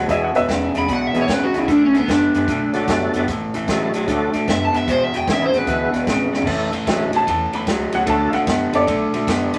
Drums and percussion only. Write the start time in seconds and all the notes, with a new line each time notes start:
0.09 kick, snare, closed hi-hat
0.35 snare, closed hi-hat
0.49 kick, snare, closed hi-hat
0.75 snare, closed hi-hat
0.88 kick, snare, closed hi-hat
1.14 snare, closed hi-hat
1.28 kick, snare, closed hi-hat
1.54 snare, closed hi-hat
1.68 kick, snare, closed hi-hat
1.95 snare, closed hi-hat
2.08 kick, snare, closed hi-hat
2.34 snare, closed hi-hat
2.48 kick, snare, closed hi-hat
2.74 snare, closed hi-hat
2.88 kick, snare, closed hi-hat
3.14 snare, closed hi-hat
3.28 kick, snare, closed hi-hat
3.54 snare, closed hi-hat
3.68 kick, snare, closed hi-hat
3.94 snare, closed hi-hat
4.08 kick, snare, closed hi-hat
4.33 snare, closed hi-hat
4.48 kick, snare, closed hi-hat
4.74 snare, closed hi-hat
4.88 kick, snare, closed hi-hat
5.14 snare, closed hi-hat
5.28 kick, snare, closed hi-hat
5.53 snare, closed hi-hat
5.67 kick, snare, closed hi-hat
5.94 snare, closed hi-hat
6.07 kick, snare, closed hi-hat
6.34 snare
6.42 floor tom
6.47 kick, snare, crash
6.73 snare, ride
6.87 kick, snare, ride
7.13 snare, ride
7.27 kick, snare, ride
7.53 snare, ride
7.67 kick, snare, ride
7.92 snare, ride
8.07 kick, snare, ride
8.33 snare, ride
8.47 kick, snare, ride
8.73 snare, ride
8.87 kick, snare, ride
9.14 snare, ride
9.27 kick, snare, ride
9.54 snare, ride